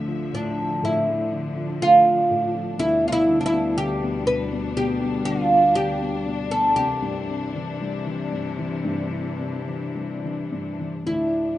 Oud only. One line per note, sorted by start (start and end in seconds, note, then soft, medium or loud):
0.35 0.84 D4 medium
0.85 1.82 E4 medium
1.82 2.79 F4 loud
2.79 3.07 E4 loud
3.08 3.11 F4 medium
3.12 3.40 E4 loud
3.41 3.44 D4 medium
3.46 3.77 E4 loud
3.78 4.24 G4 loud
4.27 4.73 B4 medium
4.77 5.25 G4 loud
5.25 5.75 F4 loud
5.75 6.51 G4 loud
6.51 6.76 A4 medium
6.76 9.92 G4 medium
11.07 11.58 E4 medium